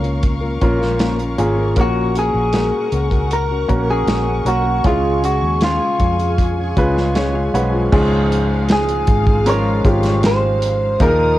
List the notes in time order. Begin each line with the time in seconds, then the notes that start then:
Already playing: C#2 A#2 F3 A#3 C#4 F4 A#4 C#5 F5 C#6
0.03 A#3 C#4 F4 A#4, closed hi-hat
0.23 kick, closed hi-hat
0.41 A#3 C#4 F4 A#4
0.60 A#1 A#3 C#4 F4 A#4, kick, closed hi-hat
0.80 A#3 C#4 F4 A#4, snare
0.99 A#2 F3 A#3 C#4 F4 A#4, snare, closed hi-hat
1.19 A#3 C#4 F4 A#4, closed hi-hat
1.38 G#1 A#3 C#4 F4 G#4 A#4, closed hi-hat
1.57 A#3 C#4 F4 A#4
1.76 A#1 A#2 A#3 C#4 F#4 A#4 F#5, kick, closed hi-hat
1.81 F#4
2.14 A#3 C#4 F#4 A#4, closed hi-hat
2.19 G#4
2.34 A#1
2.53 A#3 C#4 F#4 A#4, snare, closed hi-hat
2.91 C#2 A#3 C#4 F#4 A#4, closed hi-hat
3.10 C#4 F#4 A#4, kick, closed hi-hat
3.31 A#4, closed hi-hat
3.49 C#4 F#4 A#4
3.67 A#1 A#3 C#4 F#4 A#4, kick, closed hi-hat
3.87 C#4 F#4 G#4 A#4
4.07 A#1 A#3 C#4 F#4 A#4, snare, closed hi-hat
4.25 C#4 A#4
4.45 B1 A#3 C#4 F#4 A#4, closed hi-hat
4.64 C#4 F#4 A#4
4.84 C#2 C#3 G#3 C#4 E4 F4 G#4 G#5, kick, closed hi-hat
4.91 F5
5.23 G#3 C#4 F#4 G#4, closed hi-hat
5.42 D#2
5.61 C#3 G#3 C#4 F4 G#4, snare, closed hi-hat
5.99 F2 G#3 C#4 F4 G#4, kick, closed hi-hat
6.18 C#4 F4 G#4, closed hi-hat
6.38 kick, closed hi-hat
6.57 C#4 F4 G#4
6.76 C#2 G#3 C#4 F4 G#4 B4, kick, closed hi-hat
6.96 C#4 F4 G#4, snare
7.15 C#3 G#3 C#4 F4 G#4 C#5, snare, closed hi-hat
7.34 C#4 F4 G#4 F5
7.53 B1 F3 G#3 C#4 F4 G#4 B4 F#5, closed hi-hat
7.73 C#4 F4 G#4
7.92 C#2 G#2 F3 G#3 C#4 F4 G#4 F5, kick, crash
8.32 closed hi-hat
8.69 G#4, snare, closed hi-hat
8.89 closed hi-hat
9.07 G#1, kick, closed hi-hat
9.27 kick
9.46 F3 G#3 C#4 F4 A#4 C#5, closed hi-hat
9.85 G#1 F3 G#3 C#4 F4 G4, kick, closed hi-hat
10.03 snare, closed hi-hat
10.23 C5, snare, closed hi-hat
10.62 closed hi-hat
10.99 D#2 A#2 F3 A#3 D#4 F4 G#4 A#4 F5 D#6, kick, closed hi-hat
11.03 A#4
11.07 A#4